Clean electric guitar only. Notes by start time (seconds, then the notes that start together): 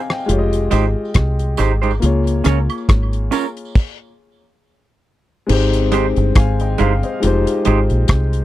0.71 G#3 D#4 G4 C5
1.58 G#3 D#4 G4 C5
1.82 G#3 D#4 G4 C5
2.44 C#4 F4 A#4 C#5
3.31 C#4 F4 A#4 C#5
5.92 G#3 D#4 G4 C5
6.78 G#3 D#4 G4 C5
7.65 G#3 D#4 G4 C5